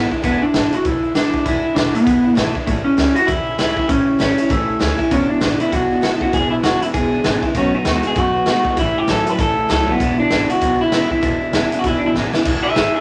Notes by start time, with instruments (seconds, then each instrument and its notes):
Already playing: steel-string acoustic guitar E2 B2 E3 G#3 D4
0.11 steel-string acoustic guitar E3 G#3 D4 E4, kick
0.22 upright bass E1, steel-string acoustic guitar E2 B2 E3 G#3 D4 E4, clean electric guitar B3, kick, closed hi-hat
0.42 steel-string acoustic guitar E3 G#3 D4 E4, clean electric guitar D4, muted upright bass stroke
0.54 upright bass G#1, steel-string acoustic guitar E2 B2 E3 G#3 D4 E4, snare, closed hi-hat
0.72 steel-string acoustic guitar E3 G#3 D4 E4, clean electric guitar F#4, muted upright bass stroke, closed hi-hat
0.85 upright bass B1, steel-string acoustic guitar E3 G#3 D4 E4, clean electric guitar E4, kick, closed hi-hat
1.03 steel-string acoustic guitar E3 G#3 D4 E4, muted upright bass stroke
1.15 upright bass G#1, steel-string acoustic guitar E2 B2 E3 G#3 D4 E4, clean electric guitar D4, snare, closed hi-hat
1.33 upright bass A1, steel-string acoustic guitar E3 G#3 D4 E4, kick
1.46 upright bass E1, steel-string acoustic guitar E2 B2 E3 G#3 D4 E4, clean electric guitar E4, kick, closed hi-hat
1.64 steel-string acoustic guitar G#3 D4 E4, muted upright bass stroke
1.68 steel-string acoustic guitar E3
1.75 upright bass E1, steel-string acoustic guitar E2 B2 E3 G#3, clean electric guitar D4, snare, closed hi-hat
1.79 steel-string acoustic guitar D4 E4
1.94 steel-string acoustic guitar E3 G#3 D4 E4, clean electric guitar B3, closed hi-hat
2.06 upright bass E1, steel-string acoustic guitar E3 G#3 D4 E4, kick, closed hi-hat
2.24 steel-string acoustic guitar E3 G#3 D4 E4, muted upright bass stroke
2.35 upright bass G#1, steel-string acoustic guitar E2 B2 E3 G#3 D4 E4, clean electric guitar A3, snare, closed hi-hat
2.55 steel-string acoustic guitar E3 G#3 D4 E4, kick
2.66 upright bass A1, steel-string acoustic guitar A2 E3 G3 C#4 E4, clean electric guitar A3, kick, closed hi-hat
2.84 clean electric guitar C#4, steel-string acoustic guitar C#4 E4, muted upright bass stroke
2.88 steel-string acoustic guitar G3
2.97 upright bass C#2, steel-string acoustic guitar A2 E3 G3 C#4 E4, snare, closed hi-hat
3.15 steel-string acoustic guitar G3 C#4 E4, clean electric guitar F#4, closed hi-hat
3.27 upright bass E2, steel-string acoustic guitar E3 G3 C#4, clean electric guitar E4, kick, closed hi-hat
3.31 steel-string acoustic guitar E4
3.46 steel-string acoustic guitar G3 C#4 E4, muted upright bass stroke
3.58 upright bass C#2, steel-string acoustic guitar A2 E3 G3 C#4 E4, clean electric guitar E4, snare, closed hi-hat
3.76 upright bass D2, steel-string acoustic guitar G3 C#4 E4, kick
3.89 upright bass A1, steel-string acoustic guitar A2 E3 G3 C#4 E4, clean electric guitar C#4, kick, closed hi-hat
4.06 steel-string acoustic guitar G3 C#4 E4, muted upright bass stroke
4.18 upright bass A1, steel-string acoustic guitar A2 E3 G3 C#4 E4, clean electric guitar C#4, snare, closed hi-hat
4.38 steel-string acoustic guitar G3 C#4 E4, closed hi-hat
4.49 upright bass A1, steel-string acoustic guitar E3 G3 C#4 E4, clean electric guitar A3, kick, closed hi-hat
4.67 steel-string acoustic guitar G3 C#4 E4
4.80 upright bass D2, steel-string acoustic guitar A2 E3 G3 C#4 E4, snare, closed hi-hat
4.98 steel-string acoustic guitar G3 C#4 E4, kick
5.11 upright bass E1, steel-string acoustic guitar E2 B2 E3 G#3 D4 E4, clean electric guitar E2 B2 C#4, kick, closed hi-hat
5.29 steel-string acoustic guitar E3 G#3 D4 E4, clean electric guitar D4, muted upright bass stroke
5.41 upright bass G#1, steel-string acoustic guitar E2 B2 E3 G#3 D4 E4, clean electric guitar E2 C#3, snare, closed hi-hat
5.59 clean electric guitar E2 C#3 E4, steel-string acoustic guitar E3 G#3 D4 E4, muted upright bass stroke, closed hi-hat
5.72 upright bass B1, clean electric guitar E2 B2 F#4, steel-string acoustic guitar E3 G#3 D4 E4, kick, closed hi-hat
5.90 steel-string acoustic guitar E3 G#3 D4 E4, muted upright bass stroke
6.01 upright bass G#1, steel-string acoustic guitar E2 B2 E3 G#3 D4 E4, clean electric guitar E2 C#3 F#4, snare, closed hi-hat
6.19 upright bass A1, clean electric guitar E2 C#3 F#4, steel-string acoustic guitar E3 G#3 D4 E4, kick
6.32 upright bass E1, steel-string acoustic guitar E2 B2 E3 G#3 D4 E4, clean electric guitar E2 B2 G#4, kick, closed hi-hat
6.50 steel-string acoustic guitar E3 G#3 D4 E4, clean electric guitar E4, muted upright bass stroke
6.63 upright bass E1, steel-string acoustic guitar E2 B2 E3 G#3 D4 E4, clean electric guitar E2 C#3 F#4, snare, closed hi-hat
6.80 clean electric guitar E2 C#3 E4, steel-string acoustic guitar E3 G#3 D4 E4, closed hi-hat
6.93 upright bass E1, clean electric guitar E2 B2 G#4, steel-string acoustic guitar E3 G#3 D4 E4, kick, closed hi-hat
7.12 steel-string acoustic guitar E3 G#3 D4 E4, muted upright bass stroke
7.24 upright bass G#1, steel-string acoustic guitar E2 B2 E3 G#3 D4 E4, clean electric guitar E2 C#3, snare, closed hi-hat
7.42 clean electric guitar E2 C#3, steel-string acoustic guitar E3 G#3 D4 E4, muted upright bass stroke, kick
7.54 upright bass B1, steel-string acoustic guitar B2 D#3 A3 B3 F#4, clean electric guitar B2 F#3 C#4, kick, closed hi-hat
7.73 steel-string acoustic guitar A3 B3 F#4, clean electric guitar D#4, muted upright bass stroke
7.85 upright bass D#2, steel-string acoustic guitar B2 D#3 A3 B3 F#4, clean electric guitar B2 G#3, snare, closed hi-hat
8.03 clean electric guitar B2 G#3, steel-string acoustic guitar A3 B3 F#4, closed hi-hat
8.07 clean electric guitar G#4
8.15 upright bass F#2, clean electric guitar B2 F#3 F#4, steel-string acoustic guitar D#3 A3 B3 F#4, kick, closed hi-hat
8.34 steel-string acoustic guitar A3 B3 F#4
8.46 upright bass D#2, steel-string acoustic guitar B2 D#3 A3 B3 F#4, clean electric guitar B2 G#3 F#4, snare, closed hi-hat
8.64 upright bass G#1, clean electric guitar B2 G#3, steel-string acoustic guitar A3 B3 F#4, kick
8.76 upright bass A1, steel-string acoustic guitar A2 E3 G3 C#4 E4, clean electric guitar A2 E3 E4, kick, closed hi-hat
8.95 steel-string acoustic guitar G3 C#4 E4, clean electric guitar G4, muted upright bass stroke
9.07 upright bass A1, steel-string acoustic guitar A2 E3 G3 C#4 E4, clean electric guitar A2 F#3 A4, snare, closed hi-hat
9.25 clean electric guitar A2 F#3, steel-string acoustic guitar G3 C#4 E4, closed hi-hat
9.30 clean electric guitar B4
9.38 upright bass A1, clean electric guitar A2 E3 A4, steel-string acoustic guitar E3 G3 C#4 E4, kick, closed hi-hat
9.56 steel-string acoustic guitar G3 C#4 E4
9.69 upright bass C#2, steel-string acoustic guitar A2 E3 G3 C#4 E4, clean electric guitar A2 F#3 A4, snare, closed hi-hat
9.87 clean electric guitar A2 F#3 B3, steel-string acoustic guitar G3 C#4 E4, kick
10.00 upright bass E1, clean electric guitar E2 B2, steel-string acoustic guitar E2 B2 E3 G#3 D4 E4, kick, closed hi-hat
10.17 steel-string acoustic guitar E3 G#3 D4 E4, clean electric guitar D4, muted upright bass stroke
10.30 upright bass G#1, steel-string acoustic guitar E2 B2 E3 G#3 D4 E4, snare, closed hi-hat
10.48 clean electric guitar E2 C#3 F#4, steel-string acoustic guitar G#3 D4 E4, muted upright bass stroke, closed hi-hat
10.52 steel-string acoustic guitar E3
10.61 upright bass B1, clean electric guitar E2 B2, steel-string acoustic guitar E3 G#3 D4 E4, kick, closed hi-hat
10.80 steel-string acoustic guitar E3 G#3 D4 E4, clean electric guitar E4, muted upright bass stroke
10.92 upright bass G#1, steel-string acoustic guitar E2 B2 E3 G#3 D4 E4, clean electric guitar E2 C#3, snare, closed hi-hat
11.09 upright bass A1, clean electric guitar E2 C#3 E4, steel-string acoustic guitar E3 G#3 D4 E4, kick
11.21 upright bass E1, steel-string acoustic guitar E2 B2 E3 G#3 D4 E4, clean electric guitar E2 B2, kick, closed hi-hat
11.41 steel-string acoustic guitar E3 G#3 D4 E4, muted upright bass stroke
11.53 upright bass E1, steel-string acoustic guitar E2 B2 E3 G#3 D4 E4, clean electric guitar E2 C#3, snare, closed hi-hat
11.72 clean electric guitar E2 C#3, steel-string acoustic guitar E3 G#3 D4 E4, muted upright bass stroke, closed hi-hat
11.79 clean electric guitar F#4
11.84 upright bass E1, clean electric guitar E2 B2 E4, steel-string acoustic guitar E3 G#3 D4 E4, kick, closed hi-hat
11.99 clean electric guitar D4, muted upright bass stroke
12.03 steel-string acoustic guitar E3 G#3 D4 E4, clean electric guitar E4
12.14 upright bass G#1, clean electric guitar E2 C#3, steel-string acoustic guitar E2 B2 E3 G#3 D4 E4, snare
12.33 clean electric guitar E2 C#3, steel-string acoustic guitar E3 G#3 D4 E4, muted upright bass stroke, snare
12.45 upright bass E1, steel-string acoustic guitar E2 B2 E3 G#3 D4 E4, kick, crash
12.63 steel-string acoustic guitar G#3 D4 E4, clean electric guitar G#4 E5, muted upright bass stroke
12.67 steel-string acoustic guitar E3
12.75 upright bass G#1, steel-string acoustic guitar E2 B2 E3 G#3 D4 E4, clean electric guitar G#4 E5, snare, open hi-hat
12.94 steel-string acoustic guitar E3 G#3 D4 E4, clean electric guitar G#4 E5, muted upright bass stroke